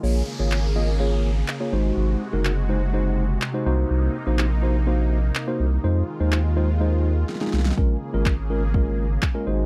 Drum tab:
CP |--------x---------------x-------|--------x---------------x-------|--------x---------------x-------|--------x-----------------------|
SD |--------------------------------|--------------------------------|--------------------------------|------------------------oooooooo|
BD |--------------------------------|--------------------------------|--------------------------------|--------------------------------|

CP |--------x---------------x-------|
SD |--------------------------------|
BD |o-------o-------o-------o-------|